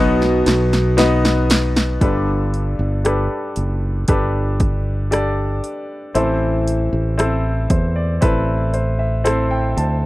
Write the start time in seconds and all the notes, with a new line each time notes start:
Already playing: B1 B2 F#3 B3 D#4 F#4 B4 D#5
0.22 snare
0.46 B1, snare, ride
0.73 snare
0.97 B3 D#4 F#4 B4 D#5, snare, ride
1.25 snare
1.50 snare, ride
1.76 snare
2.01 G1 G2 D3 D4 G4 A4 B4, kick, closed hi-hat
2.54 closed hi-hat
2.79 G1
3.04 D4 G4 A4 B4, cross-stick, closed hi-hat
3.56 F#1, closed hi-hat
4.08 G1 D4 G4 A4 B4, kick, closed hi-hat
4.60 kick, closed hi-hat
5.11 D4 G4 A4 D5, cross-stick, closed hi-hat
5.64 closed hi-hat
6.14 A1 A2 E3 C4 E4 A4 C5, closed hi-hat
6.67 closed hi-hat
6.93 A1
7.18 C4 E4 A4 C5, cross-stick, closed hi-hat
7.70 E2 C5, kick, closed hi-hat
7.96 D5
8.21 A1 C4 E4 A4 B4 E5, kick, closed hi-hat
8.74 C5, closed hi-hat
8.99 E5
9.24 C4 E4 A4 C5 E5, cross-stick, closed hi-hat
9.51 G5
9.77 D2 A5, closed hi-hat